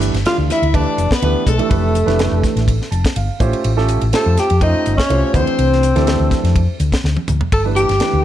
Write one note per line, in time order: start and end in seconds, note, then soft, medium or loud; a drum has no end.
0.00 0.11 G1 medium
0.00 0.13 E3 medium
0.00 0.14 A3 medium
0.00 0.13 D4 medium
0.00 0.13 G4 medium
0.00 0.14 B4 medium
0.00 hi-hat pedal medium
0.00 ride medium
0.14 0.24 G1 medium
0.14 snare soft
0.14 ride medium
0.25 0.57 E3 medium
0.25 0.58 A3 medium
0.25 0.57 D4 medium
0.25 0.37 F4 medium
0.25 0.58 G4 medium
0.25 0.58 D5 medium
0.25 0.35 F5 medium
0.25 snare medium
0.25 ride medium
0.38 0.49 D2 medium
0.50 0.76 E4 medium
0.50 0.76 E5 medium
0.50 muted fingered electric bass stroke soft
0.50 snare soft
0.50 hi-hat pedal medium
0.50 ride medium
0.62 0.84 D2 medium
0.62 ride medium
0.73 1.06 E3 medium
0.73 1.06 A3 medium
0.73 1.06 D4 medium
0.73 1.14 D4 medium
0.73 1.06 G4 medium
0.73 1.06 B4 medium
0.73 1.13 D5 medium
0.73 kick medium
0.73 ride medium
0.98 1.10 F1 medium
0.98 hi-hat pedal medium
0.98 ride medium
1.11 1.46 B3 medium
1.11 1.48 B4 medium
1.11 kick medium
1.11 snare loud
1.22 1.34 D2 medium
1.22 1.46 E3 medium
1.22 1.46 A3 medium
1.22 1.46 D4 medium
1.22 1.46 G4 medium
1.22 1.46 B4 medium
1.22 ride medium
1.47 1.58 B1 medium
1.47 2.88 A3 medium
1.47 2.89 A4 medium
1.47 kick medium
1.47 hi-hat pedal medium
1.47 ride medium
1.58 1.66 E3 medium
1.58 1.66 A3 medium
1.58 1.67 D4 medium
1.58 1.66 G4 medium
1.58 1.67 A4 medium
1.58 muted fingered electric bass stroke soft
1.58 ride medium
1.69 2.04 F1 medium
1.69 1.94 E3 medium
1.69 1.94 A3 medium
1.69 1.94 D4 medium
1.69 1.94 G4 medium
1.69 1.94 B4 medium
1.69 kick loud
1.69 ride medium
1.95 hi-hat pedal medium
1.95 ride medium
2.06 2.30 F1 medium
2.06 2.69 E3 medium
2.06 2.69 A3 medium
2.06 2.69 D4 medium
2.06 2.70 G4 medium
2.06 2.70 B4 medium
2.06 snare soft
2.06 ride medium
2.19 snare medium
2.19 ride medium
2.32 2.42 F1 medium
2.43 kick medium
2.43 snare soft
2.43 hi-hat pedal medium
2.43 ride medium
2.56 2.78 A1 medium
2.56 snare soft
2.56 ride medium
2.68 kick medium
2.68 ride medium
2.82 snare soft
2.91 3.03 F1 medium
2.91 3.14 A5 medium
2.91 hi-hat pedal medium
2.91 ride medium
3.05 kick medium
3.05 snare medium
3.05 ride medium
3.16 3.28 G1 medium
3.16 3.39 F5 medium
3.16 ride medium
3.40 3.52 A1 medium
3.40 3.70 A3 medium
3.40 3.70 C#4 medium
3.40 3.70 F4 medium
3.40 3.70 G4 medium
3.40 3.70 C5 medium
3.40 3.63 C#5 medium
3.40 kick medium
3.40 hi-hat pedal medium
3.40 ride medium
3.53 ride medium
3.64 3.98 A1 medium
3.64 ride medium
3.77 4.01 A3 medium
3.77 4.01 C#4 medium
3.77 4.01 F4 medium
3.77 4.01 G4 medium
3.77 4.01 A4 medium
3.77 snare soft
3.88 hi-hat pedal medium
3.88 ride medium
4.01 4.12 A1 medium
4.01 ride medium
4.13 4.45 A3 medium
4.13 4.45 C#4 medium
4.13 4.45 F4 medium
4.13 4.45 G4 medium
4.13 4.41 A4 medium
4.13 4.45 C5 medium
4.13 4.40 A5 medium
4.13 snare medium
4.13 ride medium
4.26 4.37 F2 medium
4.37 4.62 G4 medium
4.37 4.63 G5 medium
4.37 snare soft
4.37 hi-hat pedal medium
4.37 ride medium
4.50 4.72 F2 medium
4.50 ride medium
4.61 4.93 A3 medium
4.61 4.94 C#4 medium
4.61 4.96 D#4 medium
4.61 4.94 F4 medium
4.61 4.94 G4 medium
4.61 4.94 C5 medium
4.61 4.97 D#5 medium
4.61 kick medium
4.61 ride medium
4.75 muted fingered electric bass stroke soft
4.86 4.98 G1 medium
4.86 hi-hat pedal medium
4.86 ride medium
4.97 5.31 C#4 medium
4.97 5.33 C#5 medium
4.97 muted fingered electric bass stroke soft
4.97 kick medium
4.97 snare medium
5.09 5.22 C2 medium
5.09 5.33 A3 medium
5.09 5.33 C#4 medium
5.09 5.34 F4 medium
5.09 5.33 G4 medium
5.09 5.33 C5 medium
5.09 ride medium
5.34 5.46 D2 medium
5.34 5.82 E3 medium
5.34 5.83 A3 medium
5.34 6.75 C4 medium
5.34 5.83 D4 medium
5.34 5.83 G4 medium
5.34 5.83 C5 medium
5.34 6.77 C5 medium
5.34 kick loud
5.34 hi-hat pedal medium
5.34 ride medium
5.47 ride soft
5.59 5.92 C2 medium
5.59 ride medium
5.73 snare soft
5.83 hi-hat pedal medium
5.83 ride medium
5.95 6.18 D2 medium
5.95 6.58 E3 medium
5.95 6.58 A3 medium
5.95 6.58 D4 medium
5.95 6.58 G4 medium
5.95 6.58 A4 medium
5.95 snare soft
5.95 ride soft
6.07 snare medium
6.07 ride medium
6.20 6.30 D2 medium
6.31 kick medium
6.31 snare soft
6.31 hi-hat pedal medium
6.31 ride medium
6.44 6.66 F2 medium
6.44 snare soft
6.44 ride medium
6.56 kick medium
6.56 ride medium
6.80 6.91 D2 medium
6.80 hi-hat pedal medium
6.80 ride medium
6.92 kick medium
6.92 snare medium
6.92 ride medium
7.04 7.16 D2 medium
7.04 snare medium
7.17 high tom medium
7.28 7.40 D2 medium
7.28 hi-hat pedal medium
7.28 mid tom medium
7.41 floor tom medium
7.52 7.86 G1 medium
7.52 7.64 A4 medium
7.52 7.60 A5 medium
7.52 kick loud
7.52 ride medium
7.65 7.89 E3 medium
7.65 7.88 A3 medium
7.65 7.89 D4 medium
7.65 7.89 G4 medium
7.65 7.89 B4 medium
7.76 8.25 G4 medium
7.76 8.22 G5 medium
7.76 hi-hat pedal medium
7.76 ride medium
7.89 8.00 G1 medium
7.89 snare soft
7.89 ride medium
8.00 8.25 E3 medium
8.00 8.25 A3 medium
8.00 8.25 D4 medium
8.00 8.25 G4 medium
8.00 8.25 B4 medium
8.00 snare medium
8.00 ride medium
8.13 8.24 D2 medium